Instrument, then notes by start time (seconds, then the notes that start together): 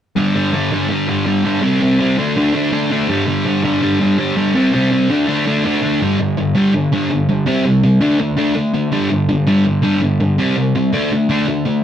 distorted electric guitar
0.16 G2 D3 G3
0.35 G2 D3 G3
0.53 G2 D3 G3
0.72 G2 D3 G3
0.89 G2 D3 G3
1.08 G2 D3 G3
1.26 G2 D3 G3
1.44 G2 D3 G3
1.62 C3 G3 C4
1.80 C3 G3 C4
2.00 C3 G3 C4
2.18 D3 A3 D4
2.36 D3 A3 D4
2.54 D3 A3 D4
2.71 D3 A3 D4
2.90 D3 A3 D4
3.08 G2 D3 G3
3.26 G2 D3 G3
3.45 G2 D3 G3
3.63 G2 D3 G3
3.81 G2 D3 G3
4.00 G2 D3 G3
4.18 G2 D3 G3
4.37 G2 D3 G3
4.55 C3 G3 C4
4.73 C3 G3 C4
4.91 C3 G3 C4
5.09 D3 A3 D4
5.27 D3 A3 D4
5.46 D3 A3 D4
5.64 D3 A3 D4
5.82 D3 A3 D4
6.01 G2 D3 G3
6.19 G2 D3
6.37 G2 D3
6.55 G2 D3 G3
6.74 G2 D3
6.93 G2 D3 G3
7.11 G2 D3
7.29 G2 D3
7.46 C3 G3 C4
7.65 C3 G3
7.84 C3 G3
8.01 D3 A3 D4
8.19 D3 A3
8.37 D3 A3 D4
8.55 D3 A3
8.74 D3 A3
8.92 G2 D3 G3
9.10 G2 D3
9.29 G2 D3
9.47 G2 D3 G3
9.65 G2 D3
9.82 G2 D3 G3
10.01 G2 D3
10.20 G2 D3
10.38 C3 G3 C4
10.57 C3 G3
10.75 C3 G3
10.93 D3 A3 D4
11.12 D3 A3
11.29 D3 A3 D4
11.48 D3 A3
11.66 D3 A3